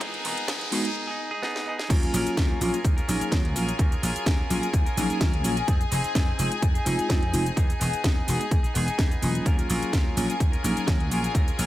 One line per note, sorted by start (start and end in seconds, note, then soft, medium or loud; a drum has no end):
0.00 0.16 E2 loud
0.00 0.22 B3 medium
0.00 0.24 D#4 loud
0.00 0.26 G#4 loud
0.00 0.96 A#4 medium
0.00 0.95 A#5 medium
0.00 kick loud
0.00 closed hi-hat medium
0.00 riser medium
0.14 closed hi-hat soft
0.24 0.32 E1 medium
0.24 0.46 B3 medium
0.24 0.48 D#4 medium
0.24 0.49 G#4 medium
0.24 open hi-hat loud
0.38 closed hi-hat soft
0.48 0.63 E2 medium
0.48 0.70 B3 loud
0.48 0.72 D#4 loud
0.48 0.73 G#4 loud
0.48 kick loud
0.48 snare loud
0.48 closed hi-hat medium
0.61 closed hi-hat soft
0.71 0.80 E1 loud
0.71 0.87 G#3 medium
0.71 0.84 B3 medium
0.71 0.88 B3 medium
0.71 0.88 D#4 medium
0.71 0.85 D#4 medium
0.71 0.88 F#4 medium
0.71 0.82 G#4 medium
0.71 open hi-hat loud
0.84 1.09 D#4 medium
0.84 1.06 G#4 medium
0.84 closed hi-hat soft
0.95 swell medium
1.07 1.33 D#4 medium
1.07 1.30 G#4 medium
1.31 1.42 D#4 medium
1.31 1.42 G#4 medium
1.42 1.65 B3 loud
1.42 1.66 D#4 loud
1.42 1.67 G#4 loud
1.42 snare medium
1.56 snare medium
1.66 1.79 B3 medium
1.66 1.80 D#4 medium
1.66 1.77 G#4 medium
1.78 1.91 D#4 soft
1.78 1.90 G#4 medium
1.78 snare medium
1.89 2.05 D#2 loud
1.89 2.56 F#3 loud
1.89 2.03 F#3 medium
1.89 2.56 A#3 medium
1.89 2.57 C#4 medium
1.89 2.03 C#4 loud
1.89 2.57 F4 loud
1.89 2.03 F4 loud
1.89 9.44 G#4 medium
1.89 2.01 A#4 loud
1.89 9.45 G#5 medium
1.89 kick loud
1.89 closed hi-hat medium
1.89 crash loud
1.89 shaker soft
2.02 2.13 C#4 medium
2.02 2.14 F4 medium
2.02 2.13 A#4 medium
2.02 closed hi-hat soft
2.02 shaker soft
2.13 2.21 A#1 medium
2.13 2.36 F#3 medium
2.13 2.37 C#4 medium
2.13 2.37 F4 medium
2.13 2.38 A#4 medium
2.13 open hi-hat loud
2.13 shaker medium
2.27 closed hi-hat medium
2.27 shaker soft
2.37 2.52 D#2 loud
2.37 2.59 F#3 medium
2.37 2.60 C#4 medium
2.37 2.61 F4 loud
2.37 2.62 A#4 loud
2.37 kick loud
2.37 snare loud
2.37 closed hi-hat medium
2.37 shaker soft
2.60 2.69 A#1 loud
2.60 2.73 F#3 medium
2.60 2.77 F#3 medium
2.60 2.77 A#3 medium
2.60 2.77 C#4 medium
2.60 2.74 C#4 medium
2.60 2.77 F4 medium
2.60 2.74 F4 medium
2.60 2.72 A#4 medium
2.60 open hi-hat medium
2.60 shaker medium
2.73 2.99 C#4 soft
2.73 2.97 F4 medium
2.73 2.95 A#4 medium
2.73 closed hi-hat medium
2.73 shaker soft
2.85 3.00 D#2 medium
2.85 kick loud
2.85 closed hi-hat medium
2.85 shaker soft
2.97 3.08 C#4 soft
2.97 3.09 F4 medium
2.97 3.08 A#4 medium
2.97 closed hi-hat soft
2.97 shaker soft
3.08 3.16 A#1 loud
3.08 3.21 F#3 medium
3.08 3.29 F#3 medium
3.08 3.29 A#3 medium
3.08 3.29 C#4 medium
3.08 3.21 C#4 medium
3.08 3.29 D#4 medium
3.08 3.21 F4 medium
3.08 3.19 A#4 medium
3.08 open hi-hat loud
3.08 shaker medium
3.20 3.31 C#4 soft
3.20 3.32 F4 medium
3.20 3.32 A#4 medium
3.20 closed hi-hat medium
3.20 shaker soft
3.31 3.56 D#2 loud
3.31 3.42 F#3 medium
3.31 3.53 F#3 loud
3.31 3.42 A#3 medium
3.31 3.42 C#4 medium
3.31 3.55 C#4 loud
3.31 3.42 F4 loud
3.31 3.56 F4 loud
3.31 3.56 A#4 loud
3.31 kick loud
3.31 snare loud
3.31 closed hi-hat medium
3.31 shaker soft
3.45 closed hi-hat soft
3.55 3.70 A#1 medium
3.55 3.77 F#3 medium
3.55 3.65 F#3 medium
3.55 3.65 A#3 medium
3.55 3.66 C#4 medium
3.55 3.78 C#4 medium
3.55 3.66 F4 loud
3.55 3.79 F4 medium
3.55 3.80 A#4 medium
3.55 open hi-hat medium
3.55 shaker medium
3.69 closed hi-hat medium
3.69 shaker soft
3.79 3.94 D#2 loud
3.79 3.92 F#3 medium
3.79 3.92 C#4 medium
3.79 3.92 F4 loud
3.79 3.90 A#4 loud
3.79 kick loud
3.79 closed hi-hat medium
3.79 shaker soft
3.91 4.02 C#4 medium
3.91 4.03 F4 medium
3.91 4.02 A#4 medium
3.91 closed hi-hat soft
3.91 shaker soft
4.02 4.10 A#1 medium
4.02 4.25 F#3 medium
4.02 4.26 C#4 medium
4.02 4.26 F4 medium
4.02 4.27 A#4 medium
4.02 open hi-hat loud
4.02 shaker medium
4.16 closed hi-hat medium
4.16 shaker soft
4.26 4.41 D#2 medium
4.26 4.48 F#3 medium
4.26 4.49 C#4 loud
4.26 4.50 F4 loud
4.26 4.51 A#4 loud
4.26 kick loud
4.26 snare loud
4.26 closed hi-hat medium
4.26 shaker soft
4.49 4.58 A#1 loud
4.49 4.62 F#3 medium
4.49 4.66 F#3 medium
4.49 4.66 A#3 medium
4.49 4.66 C#4 medium
4.49 4.63 C#4 medium
4.49 4.66 F4 medium
4.49 4.63 F4 medium
4.49 4.61 A#4 medium
4.49 open hi-hat loud
4.49 shaker medium
4.62 4.88 C#4 soft
4.62 4.86 F4 medium
4.62 4.84 A#4 medium
4.62 closed hi-hat medium
4.62 shaker soft
4.74 4.86 D#2 medium
4.74 kick loud
4.74 closed hi-hat medium
4.74 shaker soft
4.86 4.97 C#4 medium
4.86 4.98 F4 medium
4.86 4.97 A#4 medium
4.86 muted slap bass stroke soft
4.86 closed hi-hat soft
4.86 shaker soft
4.97 5.05 A#1 loud
4.97 5.10 F#3 medium
4.97 5.18 F#3 medium
4.97 5.18 A#3 medium
4.97 5.18 C#4 medium
4.97 5.10 C#4 medium
4.97 5.18 D#4 medium
4.97 5.10 F4 medium
4.97 5.08 A#4 medium
4.97 open hi-hat loud
4.97 shaker medium
5.09 5.20 C#4 soft
5.09 5.21 F4 medium
5.09 5.21 A#4 medium
5.09 muted slap bass stroke soft
5.09 closed hi-hat soft
5.09 shaker soft
5.20 5.44 D#2 loud
5.20 5.31 F#3 medium
5.20 5.43 F#3 medium
5.20 5.31 A#3 medium
5.20 5.31 C#4 medium
5.20 5.44 C#4 loud
5.20 5.31 F4 loud
5.20 5.45 F4 loud
5.20 5.45 A#4 loud
5.20 kick loud
5.20 snare loud
5.20 closed hi-hat medium
5.20 shaker soft
5.34 closed hi-hat soft
5.44 5.59 A#1 medium
5.44 5.54 F#3 medium
5.44 5.57 F#3 medium
5.44 5.54 A#3 medium
5.44 5.55 C#4 medium
5.44 5.57 C#4 medium
5.44 5.55 F4 loud
5.44 5.57 F4 medium
5.44 5.55 A#4 medium
5.44 open hi-hat medium
5.44 shaker medium
5.56 5.67 C#4 soft
5.56 5.69 F4 soft
5.56 5.68 A#4 medium
5.56 closed hi-hat medium
5.56 shaker soft
5.68 5.83 F2 loud
5.68 5.81 C4 medium
5.68 5.81 D#4 loud
5.68 5.79 G#4 loud
5.68 kick loud
5.68 closed hi-hat medium
5.68 shaker soft
5.80 5.91 D#4 soft
5.80 5.91 G#4 medium
5.80 closed hi-hat soft
5.80 shaker soft
5.91 5.99 F1 medium
5.91 6.13 C4 medium
5.91 6.15 D#4 medium
5.91 6.16 G#4 medium
5.91 open hi-hat loud
5.91 shaker medium
6.04 muted slap bass stroke soft
6.04 closed hi-hat medium
6.04 shaker soft
6.15 6.30 F2 medium
6.15 6.37 C4 medium
6.15 6.39 D#4 loud
6.15 6.40 G#4 loud
6.15 kick loud
6.15 snare loud
6.15 closed hi-hat medium
6.15 shaker soft
6.38 6.47 F1 loud
6.38 6.55 G#3 medium
6.38 6.51 C4 medium
6.38 6.55 C4 medium
6.38 6.55 D#4 medium
6.38 6.52 D#4 medium
6.38 6.55 F4 medium
6.38 6.49 G#4 medium
6.38 open hi-hat loud
6.38 shaker medium
6.51 6.76 D#4 soft
6.51 6.73 G#4 medium
6.51 closed hi-hat medium
6.51 shaker soft
6.62 6.77 F2 medium
6.62 kick loud
6.62 closed hi-hat medium
6.62 shaker soft
6.74 6.86 D#4 soft
6.74 6.86 G#4 medium
6.74 closed hi-hat soft
6.74 shaker soft
6.85 6.94 F1 loud
6.85 7.07 G#3 medium
6.85 6.98 C4 medium
6.85 7.07 C4 medium
6.85 7.07 D#4 medium
6.85 6.99 D#4 medium
6.85 7.07 F4 medium
6.85 6.96 G#4 medium
6.85 open hi-hat loud
6.85 shaker medium
6.98 7.09 D#4 medium
6.98 7.09 G#4 medium
6.98 muted slap bass stroke soft
6.98 closed hi-hat soft
6.98 shaker soft
7.09 7.35 F2 loud
7.09 7.20 G#3 medium
7.09 7.31 C4 medium
7.09 7.20 C4 medium
7.09 7.20 D#4 medium
7.09 7.33 D#4 loud
7.09 7.20 F4 loud
7.09 7.34 G#4 loud
7.09 kick loud
7.09 snare loud
7.09 closed hi-hat medium
7.09 shaker soft
7.23 closed hi-hat soft
7.32 7.48 F1 medium
7.32 7.43 G#3 medium
7.32 7.56 C4 medium
7.32 7.44 C4 medium
7.32 7.44 D#4 medium
7.32 7.56 D#4 medium
7.32 7.44 F4 loud
7.32 7.57 G#4 medium
7.32 open hi-hat loud
7.32 shaker medium
7.46 closed hi-hat medium
7.46 shaker soft
7.56 7.72 E2 loud
7.56 7.69 B3 medium
7.56 7.70 D#4 medium
7.56 7.67 G#4 loud
7.56 kick loud
7.56 closed hi-hat medium
7.56 shaker soft
7.69 7.80 D#4 medium
7.69 7.80 G#4 medium
7.69 closed hi-hat soft
7.69 shaker soft
7.79 7.88 E1 medium
7.79 8.02 B3 medium
7.79 8.04 D#4 medium
7.79 8.05 G#4 medium
7.79 open hi-hat loud
7.79 shaker medium
7.93 muted slap bass stroke soft
7.93 closed hi-hat soft
7.93 shaker soft
8.04 8.19 E2 medium
8.04 8.26 B3 medium
8.04 8.27 D#4 loud
8.04 8.29 G#4 loud
8.04 kick loud
8.04 snare loud
8.04 closed hi-hat medium
8.04 shaker soft
8.27 8.36 E1 loud
8.27 8.44 G#3 medium
8.27 8.40 B3 medium
8.27 8.44 B3 medium
8.27 8.44 D#4 medium
8.27 8.41 D#4 medium
8.27 8.44 F#4 medium
8.27 8.38 G#4 medium
8.27 open hi-hat loud
8.27 shaker medium
8.39 8.65 D#4 soft
8.39 8.62 G#4 medium
8.39 closed hi-hat medium
8.39 shaker soft
8.51 8.59 E2 medium
8.51 kick loud
8.51 closed hi-hat medium
8.51 shaker soft
8.63 8.75 D#4 soft
8.63 8.75 G#4 medium
8.63 muted slap bass stroke soft
8.63 closed hi-hat soft
8.63 shaker soft
8.74 8.87 E1 medium
8.74 8.85 G#3 medium
8.74 8.87 B3 medium
8.74 8.85 B3 medium
8.74 8.85 D#4 medium
8.74 8.88 D#4 medium
8.74 8.86 G#4 medium
8.74 open hi-hat loud
8.74 shaker medium
8.87 8.98 D#4 medium
8.87 8.98 G#4 medium
8.87 muted slap bass stroke soft
8.87 closed hi-hat soft
8.87 shaker soft
8.98 9.14 E2 loud
8.98 9.20 B3 medium
8.98 9.22 D#4 loud
8.98 9.23 G#4 loud
8.98 kick loud
8.98 snare loud
8.98 closed hi-hat medium
8.98 shaker soft
9.11 closed hi-hat soft
9.11 shaker soft
9.21 9.37 E1 medium
9.21 10.14 F#3 medium
9.21 10.14 A#3 medium
9.21 9.46 B3 medium
9.21 10.14 C#4 medium
9.21 9.46 D#4 medium
9.21 10.15 F4 medium
9.21 9.47 G#4 medium
9.21 open hi-hat medium
9.21 shaker medium
9.35 closed hi-hat soft
9.35 shaker soft
9.45 9.61 D#2 loud
9.45 9.58 F#3 medium
9.45 9.59 C#4 medium
9.45 9.58 F4 loud
9.45 11.66 G#4 medium
9.45 9.56 A#4 loud
9.45 11.66 G#5 medium
9.45 kick loud
9.45 closed hi-hat medium
9.45 shaker soft
9.58 9.69 C#4 medium
9.58 9.70 F4 medium
9.58 9.69 A#4 medium
9.58 closed hi-hat soft
9.58 shaker soft
9.68 9.77 A#1 medium
9.68 9.91 F#3 medium
9.68 9.92 C#4 medium
9.68 9.93 F4 medium
9.68 9.93 A#4 medium
9.68 open hi-hat loud
9.68 shaker medium
9.82 closed hi-hat soft
9.82 shaker soft
9.92 10.08 D#2 medium
9.92 10.14 F#3 loud
9.92 10.16 C#4 medium
9.92 10.17 F4 loud
9.92 10.18 A#4 loud
9.92 kick loud
9.92 snare loud
9.92 closed hi-hat medium
9.92 shaker soft
10.16 10.25 A#1 loud
10.16 10.29 F#3 medium
10.16 10.33 F#3 medium
10.16 10.33 A#3 medium
10.16 10.30 C#4 medium
10.16 10.33 C#4 medium
10.16 10.33 F4 medium
10.16 10.29 F4 medium
10.16 10.27 A#4 medium
10.16 open hi-hat loud
10.16 shaker medium
10.28 10.54 C#4 medium
10.28 10.53 F4 medium
10.28 10.51 A#4 medium
10.28 closed hi-hat medium
10.28 shaker soft
10.40 10.55 D#2 medium
10.40 kick loud
10.40 closed hi-hat medium
10.40 shaker soft
10.52 10.63 C#4 soft
10.52 10.64 F4 medium
10.52 10.64 A#4 medium
10.52 closed hi-hat soft
10.52 shaker soft
10.63 10.72 A#1 medium
10.63 10.76 F#3 medium
10.63 10.85 F#3 medium
10.63 10.85 A#3 medium
10.63 10.77 C#4 medium
10.63 10.85 C#4 medium
10.63 10.85 D#4 medium
10.63 10.76 F4 medium
10.63 10.75 A#4 medium
10.63 open hi-hat loud
10.63 shaker medium
10.76 10.87 C#4 medium
10.76 10.87 F4 medium
10.76 10.87 A#4 medium
10.76 closed hi-hat soft
10.76 shaker soft
10.87 11.11 D#2 loud
10.87 11.09 F#3 medium
10.87 10.98 F#3 loud
10.87 10.98 A#3 medium
10.87 10.98 C#4 medium
10.87 11.10 C#4 medium
10.87 10.98 F4 loud
10.87 11.11 F4 medium
10.87 11.12 A#4 loud
10.87 kick loud
10.87 snare loud
10.87 closed hi-hat medium
10.87 shaker soft
11.00 closed hi-hat soft
11.10 11.26 A#1 medium
11.10 11.33 F#3 medium
11.10 11.21 F#3 medium
11.10 11.22 A#3 medium
11.10 11.22 C#4 medium
11.10 11.34 C#4 medium
11.10 11.22 F4 loud
11.10 11.34 F4 medium
11.10 11.35 A#4 medium
11.10 open hi-hat medium
11.10 shaker medium
11.24 closed hi-hat soft
11.24 shaker soft
11.34 11.50 D#2 medium
11.34 11.47 F#3 medium
11.34 11.48 C#4 medium
11.34 11.45 A#4 loud
11.34 kick loud
11.34 closed hi-hat medium
11.34 shaker soft
11.46 11.58 C#4 medium
11.46 11.59 F4 medium
11.46 11.58 A#4 medium
11.46 closed hi-hat soft
11.46 shaker soft
11.57 11.66 A#1 medium
11.57 11.66 F#3 medium
11.57 11.66 C#4 medium
11.57 11.66 F4 medium
11.57 11.66 A#4 medium
11.57 open hi-hat loud
11.57 shaker medium